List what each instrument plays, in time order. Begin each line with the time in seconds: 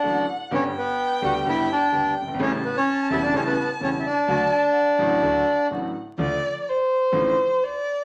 Already playing: bandoneon D4 D5, violin F#5
0.03 grand piano A1 A2 D3 F#3 A3 F#4, upright bass A1, string section A3 D4 F#4
0.50 grand piano G1 G2 D3 G3 B3 G4, upright bass G1, string section B3 D4 G4, bandoneon C#4 C#5, violin G5
0.78 bandoneon B3 B4
1.21 grand piano D2 D3 G3 B3 G4, upright bass D2, string section B3 D4 G4, bandoneon F#4 F#5
1.45 grand piano G1 G2 D3 G3 B3 G4, upright bass G1, string section B3 D4 G4, bandoneon E4 E5
1.72 bandoneon D4 D5
1.92 grand piano D2 D3 G3 B3 G4, upright bass D2, string section B3 D4 G4
2.21 grand piano F#1, upright bass F#1
2.28 grand piano G1, upright bass G1
2.34 upright bass G#1, grand piano G#1
2.39 upright bass A1, grand piano A1 A2 C#3 G3 A3 E4, string section A3 C#4 G4, bandoneon C#4 C#5, violin A5
2.65 bandoneon B3 B4
2.77 bandoneon C#4 C#5
3.10 grand piano E1 E2 C#3 G3 A3 E4, upright bass E1, string section A3 C#4 G4, bandoneon E4 E5
3.23 bandoneon D4 D5
3.33 grand piano A1 A2 C#3 G3 A3 E4, upright bass A1, string section A3 C#4 G4, bandoneon C#4 C#5
3.47 bandoneon B3 B4
3.59 bandoneon B3 B4
3.80 grand piano E1 E2 C#3 G3 A3 E4, upright bass E1, string section A3 C#4 G4, bandoneon C#4 C#5
4.00 bandoneon E5
4.06 bandoneon D4 D5
4.28 grand piano D2 D3 F#3 A3 F#4, upright bass D2, string section A3 D4 F#4, violin A5
4.76 violin F#5
4.98 upright bass A1, grand piano A1 A2 D3 F#3 A3 F#4, string section A3 D4 F#4
5.22 upright bass D2, grand piano D2 D3 F#3 A3 F#4, string section A3 D4 F#4
5.69 upright bass A1, grand piano A1 A2 D3 F#3 A3 F#4, string section A3 D4 F#4
6.18 upright bass D2, grand piano D2 D3 F3 A3 F4, violin D5
6.60 violin D5
6.69 violin C5
7.12 grand piano A1 A2 D3 F3 A3 F4, upright bass A1
7.64 violin D5